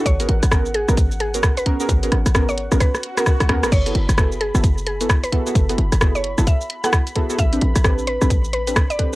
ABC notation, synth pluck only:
X:1
M:4/4
L:1/16
Q:"Swing 16ths" 1/4=131
K:F#m
V:1 name="Synth pluck"
c2 z4 G2 z2 G2 z B z2 | z4 z c2 z B2 z ^A z4 | c2 z4 G2 z2 G2 z B z2 | z4 z c2 z e2 z f z4 |
e2 z4 B2 z2 B2 z d z2 |]